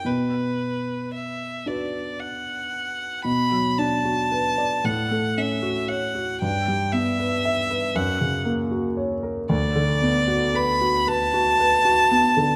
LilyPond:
<<
  \new Staff \with { instrumentName = "Violin" } { \time 6/8 \key b \minor \tempo 4. = 38 b'4 e''8 d''8 fis''4 | b''8 a''4 fis''8 e''8 fis''8 | g''8 e''4 fis''8 r4 | d''4 b''8 a''4. | }
  \new Staff \with { instrumentName = "Grand piano" } { \time 6/8 \key b \minor b,4. <d' fis' b'>4. | b,16 fis16 d'16 fis'16 b'16 d''16 a,16 a16 cis'16 fis'16 cis''16 fis'16 | g,16 g16 b16 b'16 e''16 b'16 fis,16 cis16 ais16 fis'16 cis''16 ais'16 | d,16 d16 b16 fis'16 b'16 fis'16 b'16 fis'16 b'16 fis'16 b16 d16 | }
>>